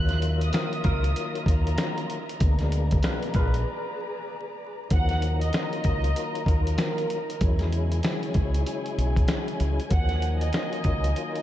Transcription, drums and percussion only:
0.09 snare, closed hi-hat
0.22 closed hi-hat
0.41 closed hi-hat
0.53 snare, closed hi-hat
0.73 closed hi-hat
0.84 kick, closed hi-hat
1.04 closed hi-hat
1.16 closed hi-hat
1.35 closed hi-hat
1.46 kick, closed hi-hat
1.67 closed hi-hat
1.78 snare, closed hi-hat
1.98 closed hi-hat
2.10 closed hi-hat
2.29 closed hi-hat
2.40 kick, closed hi-hat
2.59 snare, closed hi-hat
2.72 closed hi-hat
2.91 kick, closed hi-hat
3.03 snare, closed hi-hat
3.23 closed hi-hat
3.34 kick, closed hi-hat
3.54 closed hi-hat
4.90 kick, closed hi-hat
5.09 snare, closed hi-hat
5.22 closed hi-hat
5.41 closed hi-hat
5.53 snare, closed hi-hat
5.73 closed hi-hat
5.84 kick, closed hi-hat
6.04 closed hi-hat
6.16 closed hi-hat
6.35 closed hi-hat
6.46 kick, closed hi-hat
6.67 closed hi-hat
6.78 snare, closed hi-hat
6.98 closed hi-hat
7.10 closed hi-hat
7.30 closed hi-hat
7.41 kick, closed hi-hat
7.59 snare, closed hi-hat
7.72 closed hi-hat
7.92 closed hi-hat
8.03 snare, closed hi-hat
8.23 closed hi-hat
8.34 kick, closed hi-hat
8.54 closed hi-hat
8.66 closed hi-hat
8.86 closed hi-hat
8.99 closed hi-hat
9.16 kick, closed hi-hat
9.28 snare, closed hi-hat
9.48 closed hi-hat
9.60 closed hi-hat
9.80 closed hi-hat
9.91 kick, closed hi-hat
10.09 snare, closed hi-hat
10.22 closed hi-hat
10.41 closed hi-hat
10.53 snare, closed hi-hat
10.73 closed hi-hat
10.84 kick, closed hi-hat
11.04 closed hi-hat
11.16 closed hi-hat
11.36 closed hi-hat

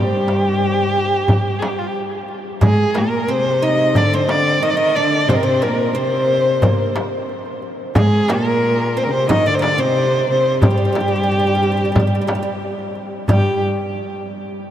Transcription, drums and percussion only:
0.28 darbuka tek
0.45 darbuka ka
1.28 darbuka dum, frame drum
1.62 darbuka tek, frame drum
1.79 darbuka ka
1.95 darbuka ka
2.12 darbuka ka
2.28 darbuka ka
2.61 darbuka dum, frame drum
2.95 darbuka tek, frame drum
3.45 darbuka ka
3.62 darbuka ka
3.95 frame drum, darbuka dum
4.29 darbuka tek, frame drum
4.62 darbuka ka
4.79 darbuka ka
4.95 darbuka ka
5.29 darbuka dum, frame drum
5.63 frame drum
5.79 darbuka ka
6.12 darbuka ka
6.29 darbuka ka
6.62 darbuka dum, frame drum
6.96 darbuka tek, frame drum
7.29 darbuka ka
7.46 darbuka ka
7.62 darbuka ka
7.95 darbuka dum, frame drum
8.28 darbuka tek, frame drum
8.46 darbuka ka
8.79 darbuka ka
8.96 darbuka ka
9.30 darbuka dum, frame drum
9.62 darbuka tek, frame drum
9.96 darbuka ka
10.13 darbuka ka
10.29 darbuka ka
10.62 darbuka dum, frame drum
10.95 darbuka tek, frame drum
11.12 darbuka ka
11.46 darbuka ka
11.62 darbuka ka
11.96 darbuka dum, frame drum
12.28 darbuka tek, frame drum
12.46 darbuka ka
12.62 darbuka ka
12.79 darbuka ka
12.95 darbuka ka
13.28 darbuka dum, frame drum

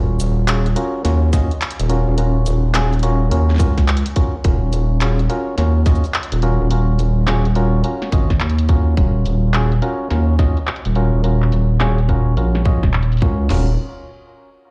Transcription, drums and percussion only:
0.20 closed hi-hat, shaker
0.48 clap, closed hi-hat
0.66 closed hi-hat
0.76 closed hi-hat
1.05 snare, closed hi-hat
1.33 kick, snare, closed hi-hat, shaker
1.51 closed hi-hat
1.62 clap, closed hi-hat
1.71 closed hi-hat
1.80 closed hi-hat
1.90 closed hi-hat
2.18 closed hi-hat
2.46 closed hi-hat, shaker
2.74 clap, snare, closed hi-hat
2.93 closed hi-hat
2.99 closed hi-hat
3.03 closed hi-hat
3.31 closed hi-hat
3.49 snare
3.51 snare
3.54 snare
3.56 snare
3.58 kick, snare, closed hi-hat, shaker
3.78 kick, snare, closed hi-hat
3.88 clap, closed hi-hat
3.97 closed hi-hat
4.06 closed hi-hat
4.16 kick, closed hi-hat
4.44 kick, closed hi-hat
4.73 closed hi-hat, shaker
5.01 clap, closed hi-hat
5.19 closed hi-hat
5.30 closed hi-hat
5.58 snare, closed hi-hat
5.86 kick, snare, closed hi-hat, shaker
5.95 shaker
6.04 closed hi-hat, shaker
6.14 clap, closed hi-hat
6.23 closed hi-hat
6.32 closed hi-hat
6.42 closed hi-hat
6.71 closed hi-hat
6.99 closed hi-hat, shaker
7.27 clap, snare, closed hi-hat
7.45 closed hi-hat
7.55 closed hi-hat
7.84 closed hi-hat
8.02 snare
8.12 kick, closed hi-hat, shaker
8.30 kick, snare, closed hi-hat
8.40 clap, closed hi-hat
8.50 closed hi-hat
8.58 closed hi-hat
8.69 kick, closed hi-hat
8.97 kick, closed hi-hat
9.26 closed hi-hat, shaker
9.54 clap, closed hi-hat
9.72 closed hi-hat
9.82 closed hi-hat
10.11 snare, closed hi-hat
10.39 kick, snare, closed hi-hat, shaker
10.57 closed hi-hat
10.67 clap, closed hi-hat
10.76 closed hi-hat
10.85 closed hi-hat
10.95 closed hi-hat
11.24 closed hi-hat
11.42 clap
11.52 closed hi-hat, shaker
11.80 clap, snare, closed hi-hat
11.98 closed hi-hat
12.09 kick, closed hi-hat
12.37 closed hi-hat
12.55 snare
12.65 kick, closed hi-hat, shaker
12.83 kick, snare, closed hi-hat
12.93 clap, closed hi-hat
13.03 closed hi-hat
13.12 closed hi-hat
13.17 closed hi-hat
13.20 kick, closed hi-hat
13.22 closed hi-hat
13.50 snare, floor tom, crash

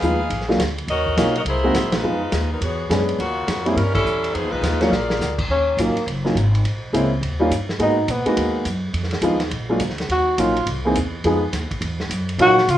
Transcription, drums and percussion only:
0.02 hi-hat pedal
0.30 ride
0.41 snare
0.50 snare
0.60 snare, hi-hat pedal, ride
0.78 ride
0.88 ride
1.06 kick
1.17 snare, hi-hat pedal, ride
1.36 ride
1.46 ride
1.75 snare, hi-hat pedal, ride
1.92 snare, ride
2.32 snare, hi-hat pedal, ride
2.62 ride
2.91 snare, hi-hat pedal, ride
3.09 ride
3.20 ride
3.48 snare, hi-hat pedal, ride
3.66 ride
3.77 ride
3.95 kick, crash
4.06 hi-hat pedal
4.24 ride
4.35 ride
4.63 snare, hi-hat pedal, ride
4.81 snare, ride
4.92 snare
5.10 snare
5.21 snare, hi-hat pedal
5.38 kick, crash
5.78 hi-hat pedal, ride
5.97 ride
6.08 ride
6.26 snare
6.37 hi-hat pedal, ride
6.55 ride
6.65 ride
6.94 hi-hat pedal, ride
7.23 ride
7.51 hi-hat pedal, ride
7.69 snare
7.80 ride
8.08 hi-hat pedal, ride
8.26 ride
8.37 ride
8.65 hi-hat pedal, ride
8.94 ride
9.03 snare
9.11 snare, ride
9.22 hi-hat pedal, ride
9.40 snare, ride
9.51 ride
9.80 hi-hat pedal, ride
9.90 snare
9.98 snare, ride
10.09 ride
10.38 hi-hat pedal, ride
10.57 ride
10.67 ride
10.95 hi-hat pedal, ride
11.24 ride
11.53 snare, hi-hat pedal, ride
11.71 kick, ride
11.82 ride
12.00 snare
12.11 hi-hat pedal, ride
12.29 ride
12.39 ride
12.58 snare
12.69 hi-hat pedal, ride

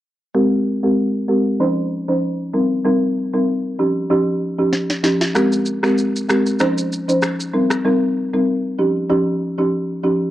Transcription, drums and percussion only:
4.73 snare
4.90 snare
5.04 snare
5.21 snare
5.35 finger snap, cross-stick, shaker
5.52 shaker
5.66 shaker
5.83 finger snap, cross-stick, shaker
5.98 shaker
6.16 shaker
6.29 finger snap, cross-stick, shaker
6.46 shaker
6.59 finger snap, cross-stick, shaker
6.78 shaker
6.93 shaker
7.09 shaker
7.22 finger snap, cross-stick, shaker
7.40 shaker
7.70 finger snap, cross-stick, shaker

